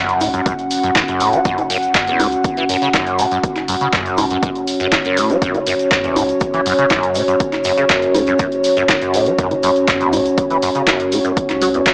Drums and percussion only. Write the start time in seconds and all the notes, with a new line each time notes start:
0.09 closed hi-hat, shaker
0.21 open hi-hat, high conga, shaker
0.34 closed hi-hat, shaker
0.46 kick, closed hi-hat, shaker
0.59 closed hi-hat, shaker
0.71 open hi-hat, shaker
0.83 closed hi-hat, shaker
0.96 kick, clap, closed hi-hat, high conga, shaker
1.08 closed hi-hat, shaker
1.20 open hi-hat, shaker
1.33 closed hi-hat, shaker
1.45 kick, closed hi-hat, shaker
1.58 closed hi-hat, high conga, shaker
1.70 open hi-hat, shaker
1.83 closed hi-hat, shaker
1.95 kick, clap, closed hi-hat, shaker
2.07 closed hi-hat, shaker
2.20 open hi-hat, high conga, shaker
2.32 closed hi-hat, shaker
2.44 kick, closed hi-hat, shaker
2.57 closed hi-hat, shaker
2.69 open hi-hat, shaker
2.82 closed hi-hat, shaker
2.94 kick, clap, closed hi-hat, high conga, shaker
3.07 closed hi-hat, shaker
3.19 open hi-hat, shaker
3.31 closed hi-hat, shaker
3.43 kick, closed hi-hat, shaker
3.56 clap, closed hi-hat, high conga, shaker
3.68 open hi-hat, shaker
3.80 closed hi-hat, shaker
3.93 kick, clap, closed hi-hat, shaker
4.06 closed hi-hat, shaker
4.17 open hi-hat, high conga, shaker
4.30 closed hi-hat, shaker
4.43 kick, closed hi-hat, shaker
4.55 closed hi-hat, shaker
4.67 open hi-hat, shaker
4.80 closed hi-hat, shaker
4.92 kick, clap, closed hi-hat, high conga, shaker
5.05 closed hi-hat, shaker
5.17 open hi-hat, shaker
5.30 closed hi-hat, shaker
5.42 kick, closed hi-hat, shaker
5.54 closed hi-hat, high conga, shaker
5.67 open hi-hat, shaker
5.79 closed hi-hat, shaker
5.91 kick, clap, closed hi-hat, shaker
6.04 closed hi-hat, shaker
6.16 open hi-hat, high conga, shaker
6.29 closed hi-hat, shaker
6.40 kick, closed hi-hat, shaker
6.54 closed hi-hat, shaker
6.66 open hi-hat, shaker
6.78 closed hi-hat, shaker
6.90 kick, clap, closed hi-hat, high conga, shaker
7.03 closed hi-hat, shaker
7.15 open hi-hat, shaker
7.28 closed hi-hat, shaker
7.40 kick, closed hi-hat, shaker
7.53 clap, closed hi-hat, high conga, shaker
7.64 open hi-hat, shaker
7.77 closed hi-hat, shaker
7.90 kick, clap, closed hi-hat, shaker
8.02 closed hi-hat, shaker
8.15 open hi-hat, high conga, shaker
8.27 closed hi-hat, shaker
8.39 kick, closed hi-hat, shaker
8.52 closed hi-hat, shaker
8.64 open hi-hat, shaker
8.77 closed hi-hat, shaker
8.89 kick, clap, closed hi-hat, high conga, shaker
9.02 closed hi-hat, shaker
9.14 open hi-hat, shaker
9.25 closed hi-hat, shaker
9.38 kick, closed hi-hat, shaker
9.51 closed hi-hat, high conga, shaker
9.63 open hi-hat, shaker
9.76 closed hi-hat, shaker
9.88 kick, clap, closed hi-hat, shaker
10.00 closed hi-hat, shaker
10.13 open hi-hat, high conga, shaker
10.26 closed hi-hat, shaker
10.38 kick, closed hi-hat, shaker
10.50 closed hi-hat, shaker
10.62 open hi-hat, shaker
10.75 closed hi-hat, shaker
10.87 kick, clap, closed hi-hat, high conga, shaker
11.00 closed hi-hat, shaker
11.12 open hi-hat, shaker
11.24 closed hi-hat, shaker
11.37 kick, closed hi-hat, shaker
11.50 clap, closed hi-hat, high conga, shaker
11.62 open hi-hat, shaker
11.74 closed hi-hat, shaker
11.86 kick, clap, closed hi-hat, shaker